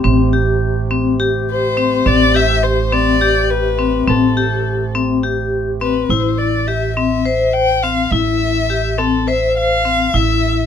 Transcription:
Already playing: C3 A3 G4
0.04 A1 C4
0.33 G4
0.91 C4
1.20 G4
1.50 C5
1.77 C4
2.06 A1 C4 D5
2.35 G4 E5
2.63 C5
2.93 C4 D5
3.21 G4
3.50 B4
3.79 C4
4.07 A1 C4 A4
4.37 G4
4.95 C4
5.23 G4
5.81 C4 B4
6.09 A1 E4 C5
6.38 D5
6.67 G4 E5
6.96 C4 E5
7.25 C5
7.53 G5
7.82 C4 F5
8.10 A1 E4 E5
8.70 G4
8.98 C4 A4
9.27 C5 E5
9.57 F5
9.85 C4
10.14 A1 E4 E5

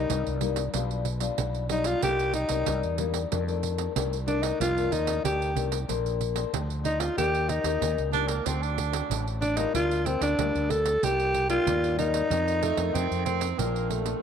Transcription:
Already playing: G3 A#3 D#4
0.09 C2 G2, pandeiro
0.27 C2, pandeiro
0.41 G3 A#3 D#4, pandeiro
0.56 pandeiro
0.74 B1 B2 G3 D4 F4, pandeiro
0.91 pandeiro
1.05 pandeiro
1.20 G3 D4 F4, pandeiro
1.38 B1 B2, pandeiro
1.55 pandeiro
1.69 G3 D4 D#4 F4, pandeiro
1.84 F4, pandeiro
2.02 C2 C3 G3 A#3 D#4 G4, pandeiro
2.19 pandeiro
2.34 D#4, pandeiro
2.49 C2 G3 A#3 D#4, pandeiro
2.66 C2 G2, pandeiro
2.83 E2, pandeiro
2.98 G3 A#3 D#4, pandeiro
3.14 pandeiro
3.31 F2 D#3 A3 D4, pandeiro
3.48 D#3 A3 D4, pandeiro
3.63 pandeiro
3.78 pandeiro
3.96 C2 C3 D#3 A3 D4, pandeiro
4.13 pandeiro
4.26 D#3 A3 D4, pandeiro
4.43 D#4, pandeiro
4.60 C2 F2 F4, pandeiro
4.76 D#3 A3 D4, pandeiro
4.91 D#2 D#4, pandeiro
5.07 pandeiro
5.23 D2 C3 D#3 A3 D4 G4, pandeiro
5.42 pandeiro
5.55 C2 D#3 A3 D4, pandeiro
5.72 pandeiro
5.88 A#1 A#3 D4 A4 C5, pandeiro
6.06 pandeiro
6.21 pandeiro
6.35 D4 A4 C5, pandeiro
6.53 D2 F3, pandeiro
6.70 pandeiro
6.84 D4 D#4 A4 C5, pandeiro
7.00 F4, pandeiro
7.17 D#2 D#3 A#3 D4 G4, pandeiro
7.35 pandeiro
7.49 D#4, pandeiro
7.64 D#2 A#3 G4, pandeiro
7.81 D#2 A#2, pandeiro
7.98 C#2, pandeiro
8.12 A#3 D4 G4, pandeiro
8.28 A#3, pandeiro
8.45 D2 D3 A3 C4 F#4, pandeiro
8.62 D4, pandeiro
8.78 pandeiro
8.92 A3 C4 F#4, pandeiro
9.10 A1 A2, pandeiro
9.28 pandeiro
9.41 D4, pandeiro
9.56 G3 A#3 D#4 F4, pandeiro
9.74 D2 D3 F4, pandeiro
9.91 pandeiro
10.05 G3 A#3 C4 F4, pandeiro
10.21 D2 D4, pandeiro
10.38 D2 D3 G3 A#3 F4, pandeiro
10.55 D2, pandeiro
10.70 A4, pandeiro
10.86 pandeiro
11.03 C2 C3 G3 A#3 D#4 G4, pandeiro
11.20 pandeiro
11.34 pandeiro
11.49 G3 A#3 D#4 F4, pandeiro
11.66 D#2 G2, pandeiro
11.84 pandeiro
11.98 G3 A#3 D#4, pandeiro
12.14 pandeiro
12.30 F2 D#3 A3 C4, pandeiro
12.48 pandeiro
12.62 A3, pandeiro
12.77 F2 D#3 A3 C4, pandeiro
12.94 F2 C3 C4, pandeiro
13.11 F2, pandeiro
13.25 D#3 A3 C4, pandeiro
13.41 pandeiro
13.58 A#1 A#2 F3 A#3 D4, pandeiro
13.76 pandeiro
13.89 A3, pandeiro
14.04 F3 A3 D4, pandeiro

